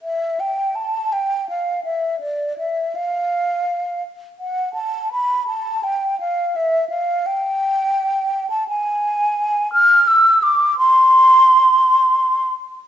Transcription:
\new Staff \with { instrumentName = "Flute" } { \time 3/4 \key g \mixolydian \tempo 4 = 84 e''8 g''8 a''8 g''8 f''8 e''8 | d''8 e''8 f''4. r8 | fis''8 a''8 b''8 a''8 g''8 f''8 | e''8 f''8 g''4.~ g''16 a''16 |
\key c \major gis''4. f'''8 e'''8 d'''8 | c'''2~ c'''8 r8 | }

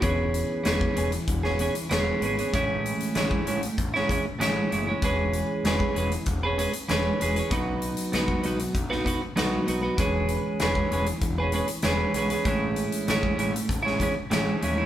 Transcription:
<<
  \new Staff \with { instrumentName = "Clean electric guitar" } { \time 4/4 \key e \major \tempo 4 = 97 <e b cis' gis'>4 <e b cis' gis'>8 <e b cis' gis'>8. <b cis' gis'>16 <e b cis' gis'>8 <e b cis' gis'>8 <e b cis' gis'>16 <b cis' gis'>16 | <a, e gis cis' e'>4 <a, e gis cis' e'>8 <e gis cis' e'>8. <gis cis' e'>16 <e gis cis' e'>8 <a, e gis cis' e'>8 <e gis cis' e'>16 <gis cis' e'>16 | <e gis cis' gis' b'>4 <e gis cis' gis' b'>8 <gis cis' gis' b'>8. <cis' gis' b'>16 <gis cis' gis' b'>8 <e gis cis' gis' b'>8 <gis cis' gis' b'>16 <cis' gis' b'>16 | <b, fis b dis' fis' b'>4 <b, fis b dis' fis' b'>8 <b dis' fis' b'>8. <b dis' fis' b'>16 <b dis' fis' b'>8 <b, fis b dis' fis' b'>8 <b dis' fis' b'>16 <b dis' fis' b'>16 |
<e gis cis' gis' b'>4 <e gis cis' gis' b'>8 <gis cis' gis' b'>8. <cis' gis' b'>16 <gis cis' gis' b'>8 <e gis cis' gis' b'>8 <gis cis' gis' b'>16 <cis' gis' b'>16 | <a, e gis cis' e'>4 <a, e gis cis' e'>8 <e gis cis' e'>8. <gis cis' e'>16 <e gis cis' e'>8 <a, e gis cis' e'>8 <e gis cis' e'>16 <gis cis' e'>16 | }
  \new Staff \with { instrumentName = "Picked electric bass" } { \clef bass \time 4/4 \key e \major e,,4 e,,8 e,,8 e,,4 e,,8 gis,,8 | a,,4 a,,8 a,,8 a,,4 a,,8 fis,,8 | e,,4 e,,8 e,,8 e,,4 e,,8 e,,8 | b,,4 b,,8 b,,8 b,,4 b,,8 b,,8 |
e,,4 e,,8 e,,8 e,,4 e,,8 b,,8 | a,,4 a,,8 a,,8 a,,4 a,,8 dis,8 | }
  \new DrumStaff \with { instrumentName = "Drums" } \drummode { \time 4/4 <hh bd>8 hh8 <hh sn>16 bd16 hh16 hh16 <hh bd>16 sn16 hh16 hh16 <hh sn>8 hh16 hh16 | <hh bd>8 hh16 hh16 <hh sn>16 bd16 hh16 hh16 <hh bd>16 sn16 <hh bd>8 <hh sn>8 hh8 | <hh bd>8 hh8 <hh sn>16 bd16 hh16 hh16 <hh bd>8 hh16 hh16 <hh sn>8 hh16 hh16 | <hh bd>8 hh16 hh16 <hh sn>16 bd16 hh16 hh16 <hh bd>16 sn16 <hh bd>8 <hh sn>8 hh8 |
<hh bd>8 hh8 <hh sn>16 bd16 hh16 hh16 <hh bd>8 hh16 hh16 <hh sn>8 hh16 hh16 | <hh bd>8 hh16 hh16 <hh sn>16 bd16 hh16 hh16 <hh bd>16 sn16 <hh bd>8 <hh sn>8 hh8 | }
>>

